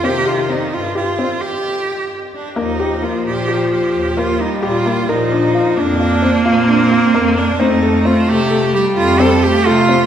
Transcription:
X:1
M:11/8
L:1/16
Q:1/4=131
K:Eblyd
V:1 name="Ambient pad"
z16 z6 | z16 z6 | z16 z6 | [Gfa]16- [Gfa]6 |]
V:2 name="Cello"
G2 F2 E2 F2 F4 G6 z2 D2 | E4 F2 G4 G4 F2 E2 F4 | E6 D6 C8 D2 | E4 F2 G4 G2 F2 A2 G2 F4 |]
V:3 name="Felt piano"
C2 G2 C4 G2 C2 z8 z2 | B,2 G2 B,4 G4 z2 B,4 G2 B,2 | B2 D2 F2 D2 F2 C2 F2 D2 F2 B,4 | C2 A2 C4 A4 z2 C4 A2 C2 |]
V:4 name="Viola" clef=bass
E,8- E,3 z8 z3 | F,16 G,6 | F,6 B,16 | A,8- A,2 G,6 A,6 |]
V:5 name="Bass clarinet" clef=bass
C,6 G,,4- G,, z8 z3 | E,,6 B,,6 E,,6 B,,4 | B,,6 F,,6 B,,6 F,,4 | F,,6 C,6 F,,6 C,4 |]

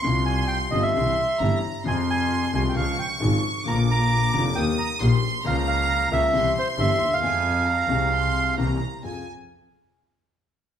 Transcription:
X:1
M:4/4
L:1/16
Q:1/4=134
K:Fm
V:1 name="Violin section"
c'8 c'4 b4 | c'8 d'8 | =d'8 e'4 c'4 | b8 c'8 |
a4 b4 c'4 b4 | a2 z12 z2 |]
V:2 name="Bandoneon"
c'2 a2 g2 e =e6- e z2 | a2 a4 a3/2 g/2 f2 g2 z4 | b2 b4 b2 g2 b2 z4 | f2 f4 =e4 c2 e3 f- |
f12 z4 | z16 |]
V:3 name="Grand piano" clef=bass
[C,,C,F,G,F]6 [G,,,G,,C,F,G,F]2 [C,,C,=E,G,=E]2 z2 [G,,,G,,C,E,G,E]2 z2 | [F,,C,F,A,F]6 [C,,C,F,A,F]2 [D,,D,F,A,F]2 z2 [A,,,A,,D,F,A,F]2 z2 | [B,,,B,,=D,F,B,F]6 [F,,,F,,D,F,B,F]2 [E,,E,G,B,G]2 z2 [B,,,B,,E,G,B,G]2 z2 | [D,,D,F,B,F]6 [D,,D,F,B,F]2 [C,,C,=E,G,CG]2 z2 [G,,,G,,E,G,CG]2 z/2 =D,,/2 _E,,/2 =E,,/2 |
[F,,F,A,CA]6 [C,,C,F,A,CA]6 [C,,C,=E,B,CG]2 z2 | [F,,CFA]2 z12 z2 |]
V:4 name="Double bass" clef=bass
C,,6 G,,,2 C,,2 z2 G,,,2 z2 | F,,6 C,,2 D,,2 z2 A,,,2 z2 | B,,,6 F,,,2 E,,2 z2 B,,,2 z2 | D,,6 D,,2 C,,2 z2 G,,,2 E,,2 |
F,,6 C,,6 C,,2 z2 | F,,2 z12 z2 |]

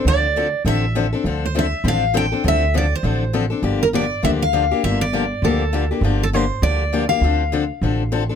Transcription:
X:1
M:4/4
L:1/8
Q:"Swing" 1/4=201
K:Dm
V:1 name="Steel-string acoustic guitar"
d4 e3 z | z c e2 f2 g2 | e2 d c3 z2 | z B d2 e f3 |
e d3 A3 z | z A c2 d3 f- | f6- f z |]
V:2 name="Steel-string acoustic guitar"
[D,F,CDA] z [D,F,CDA] z [D,F,CDA] z [D,F,CDA] [CDA] | [D,F,CDA] z [D,F,CDA] z [D,F,CDA] z [D,F,CDA] [CDA] | [D,F,CDA] z [D,F,CDA] z [D,F,CDA] z [D,F,CDA] [CDA] | [D,F,B,DG] z [D,F,B,DG] z [D,F,B,DG] z [D,F,B,DG] [B,DG] |
[D,F,B,DG] z [D,F,B,DG] z [D,F,B,DG] z [D,F,B,DG] [B,DG] | [D,F,B,DG] z [D,F,B,DG] z [D,F,B,DG] z [D,F,B,DG] [B,DG] | [D,F,CDA] z [D,F,CDA] z [D,F,CDA] z [D,F,CDA] [CDA] |]
V:3 name="Upright bass" clef=bass
D,,4 A,,,4 | D,,4 A,,,4 | D,,4 A,,,4 | G,,,4 D,,4 |
G,,,4 D,,4 | G,,,4 D,,4 | D,,4 A,,,4 |]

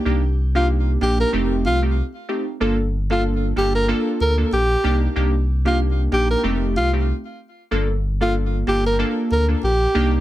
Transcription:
X:1
M:4/4
L:1/16
Q:"Swing 16ths" 1/4=94
K:Gm
V:1 name="Alto saxophone"
z3 F z2 G B z2 F z4 z | z3 F z2 G B z2 B z G3 z | z3 F z2 G B z2 F z4 z | z3 F z2 G B z2 B z G3 z |]
V:2 name="Synth keys"
[B,DEG] z2 [B,DEG]3 [B,DEG]2 [A,CEG]3 [A,CEG] z2 [A,CEG] z | [B,DFA] z2 [B,DFA]3 [B,DFA]2 [B,DFA]3 [B,DFA] z2 [B,DEG]2 | [B,DEG] z2 [B,DEG]3 [B,DEG]2 [A,CEG]3 [A,CEG] z4 | [B,DFA] z2 [B,DFA]3 [B,DFA]2 [B,DFA]3 [B,DFA] z2 [B,DEG]2 |]
V:3 name="Sub bass" clef=bass
C,,6 B,,,2 F,,,2 C,,3 z3 | G,,,6 G,,,3 z D,,2 B,,,2 C,,2 | C,,6 B,,,2 F,,,2 C,,3 z3 | G,,,6 G,,,3 z D,,2 B,,,2 C,,2 |]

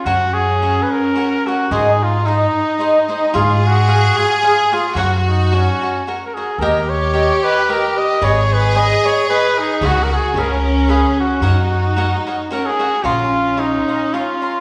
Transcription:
X:1
M:3/4
L:1/16
Q:"Swing" 1/4=111
K:F#
V:1 name="Cavaquinho"
[FAcf]2 z2 [FAcf]2 z2 [FAcf]2 [FAcf]2 | [DG^Bd]2 z2 [DGBd]2 z2 [DGBd]2 [DGBd]2 | [EGce]2 z2 [EGce]2 [EGce]2 [EGce]2 [EGce]2 | [FAcf]2 z2 [FAcf]2 [FAcf]2 [FAcf]2 [FAcf]2 |
[=GAd=g]2 z2 [GAdg]2 [GAdg]2 [GAdg]2 z2 | [GBdg]2 z2 [GBdg]2 [GBdg]2 [GBdg]2 z2 | [GBcf]2 z2 [GBce]2 z2 [GBce]2 z2 | [FAcf]2 z2 [FAcf]2 [FAcf]2 [FAcf]2 [FAcf]2 |
[K:Bbm] [dfbc']2 z2 [dfbc']2 [dfbc']2 [dfbc']2 [dfbc']2 |]
V:2 name="Trumpet"
F2 G3- G/2 B/2 A4 F2 | G2 E2 D6 D2 | E2 F4 G4 E2 | F2 D2 C4 z3/2 A/2 G2 |
A2 c4 B2 A2 d2 | c2 B2 d2 c2 B2 D2 | F3/2 A/2 G2 A4 G2 F2- | F8 A G3 |
[K:Bbm] F4 E4 F4 |]
V:3 name="Violin section"
C12 | D12 | G12 | F8- F2 z2 |
=G12 | G12 | F4 C8 | D8 C2 F2 |
[K:Bbm] D12 |]
V:4 name="Upright bass" clef=bass
F,,8 z4 | G,,8 z4 | G,,8 z4 | F,,8 z4 |
D,,8 z4 | G,,,8 z4 | C,,4 C,,8 | F,,8 z4 |
[K:Bbm] B,,,8 z4 |]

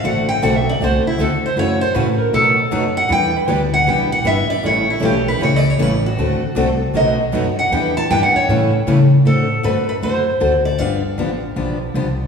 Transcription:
X:1
M:4/4
L:1/16
Q:"Swing" 1/4=156
K:Em
V:1 name="Steel-string acoustic guitar"
f2 g2 (3f2 e2 d2 c2 E2 A2 c2 | ^c2 =c2 B2 _B2 A4 z2 f2 | g2 B2 d2 f2 g2 f2 e2 d2 | ^c2 E2 G2 B2 (3c2 d2 c2 B2 F2- |
F4 z4 ^d6 f2 | g2 a2 (3g2 f2 ^c2- c2 z6 | A4 B2 B2 c6 d2 | =f12- f2 z2 |]
V:2 name="Steel-string acoustic guitar"
[D,A,CFA]2 z2 [D,A,CFA] z3 [D,A,CFA]2 z2 [D,A,CFA] z3 | [F,^CEA]2 z2 [F,CEA] z3 [B,,^D,F,B,^DA]2 z2 [B,,D,F,B,DA] z3 | [E,G,DEB]2 z2 [E,G,DEB] z3 [E,G,DEB]2 z2 [E,G,DEB] z3 | [E,G,^CEA]2 z2 [E,G,CEA] z3 [E,G,CEA]2 z2 [E,G,CEA] z3 |
[D,A,CFA]2 z2 [D,A,CFA] z3 [B,,^D,F,B,^DA]2 z2 [B,,D,F,B,DA] z3 | [E,G,DEB]2 z2 [E,G,DEB] z3 [E,G,^CEA]2 z2 [E,G,CEA] z3 | z16 | z16 |]
V:3 name="Steel-string acoustic guitar"
[D,A,CFA]2 z2 [D,A,CFA] z3 [D,A,CFA]2 z2 [D,A,CFA] z3 | [^C,E,A,^CF]2 z2 [C,E,A,CF] z3 [B,,F,A,^DF]2 z2 [B,,F,A,DF] z3 | [E,B,DG]2 z2 [E,B,DG] z3 [E,B,DG]2 z2 [E,B,DG] z3 | [^C,E,A,^CG]2 z2 [C,E,A,CG] z3 [C,E,A,CG]2 z2 [C,E,A,CG] z3 |
[D,A,CFA]2 z2 [D,A,CFA] z3 [B,,F,A,^DF]2 z2 [B,,F,A,DF] z3 | [E,B,DG]2 z2 [E,B,DG] z3 [^C,E,A,^CG]2 z2 [C,E,A,CG] z3 | [D,A,CFA]2 z2 [D,A,CFA] z3 [D,A,CFA]2 z2 [D,A,CFA] z3 | [D,=F,B,DG]2 z2 [D,F,B,DG] z3 [D,F,B,DG]2 z2 [D,F,B,DG] z3 |]
V:4 name="Upright bass" clef=bass
A,,,4 B,,,4 C,,2 z2 D,,2 z2 | F,,4 A,,4 B,,4 F,,4 | E,,4 D,,4 B,,,4 G,,,2 z2 | A,,,4 B,,,4 ^C,,4 A,,,4 |
D,,2 z2 C,,4 B,,,4 F,,2 z2 | E,,4 G,,2 z2 A,,4 ^C,4 | A,,4 G,,4 F,,4 D,,4 | G,,,4 A,,,4 B,,,4 C,,4 |]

